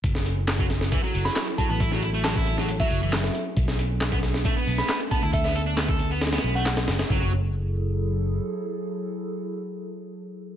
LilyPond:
<<
  \new Staff \with { instrumentName = "Synth bell" } { \time 4/4 \key fis \minor \tempo 4 = 136 r2 r8. b''16 b''16 r16 a''16 a''16 | r4 a''4 r16 e''4~ e''16 r8 | r2 r8. b''16 b''16 r16 a''16 a''16 | e''16 e''16 r2 r16 fis''16 fis''16 r8. |
r1 | r1 | }
  \new Staff \with { instrumentName = "Ambient pad" } { \time 4/4 \key fis \minor <fis e' fis' a'>1~ | <fis e' fis' a'>2.~ <fis e' fis' a'>8 <a b d'>8~ | <a b d'>1~ | <a b d'>1 |
<fis e' gis' a'>1~ | <fis e' gis' a'>1 | }
  \new Staff \with { instrumentName = "Distorted electric guitar" } { \time 4/4 \key fis \minor r4 r16 fis16 r8 e16 fis4 r16 fis16 b16 | e'16 fis16 e'16 a16 fis16 e'8 fis16 r16 fis8 e16 r4 | r4 r16 b16 r8 a16 b4 r16 b16 e'16 | a'16 b16 a'16 d'16 b16 a'8 b16 r16 b8 a16 r4 |
fis8 r2. r8 | r1 | }
  \new Staff \with { instrumentName = "Fingered electric bass" } { \clef bass \time 4/4 \key fis \minor fis,,2 r8 fis,,16 r4 a,,16~ | a,,2~ a,,16 r16 fis,,8. r8. | b,,2 r8 b,,16 r4 d,16~ | d,2~ d,16 r16 b,,4 fis,,16 r16 |
fis,,2. r4 | r1 | }
  \new DrumStaff \with { instrumentName = "Drums" } \drummode { \time 4/4 <hh bd>16 sn16 hh8 <hc hh sn>16 bd16 <hh sn>16 sn16 <hh bd>8 hho16 sn16 <hc hh sn>16 hh16 <hh bd>8 | <hh bd>16 sn16 hh8 <hc hh sn>16 bd16 hh16 sn16 hh16 bd16 hh8 <hc hh sn>16 sn16 hh8 | <hh bd>16 sn16 hh8 <hc hh sn>16 bd16 <hh sn>16 sn16 <hh bd>8 hho16 sn16 <hc hh sn>16 hh16 <hh bd>8 | <hh bd>16 sn16 hh8 <hc hh sn>16 bd16 hh8 <hh sn>32 <hh sn>32 <hh sn>32 <hh sn>8 r32 <hc hh sn>16 <hh sn>16 <hh sn>16 <hh sn>16 |
<bd tomfh>4 r4 r4 r4 | r4 r4 r4 r4 | }
>>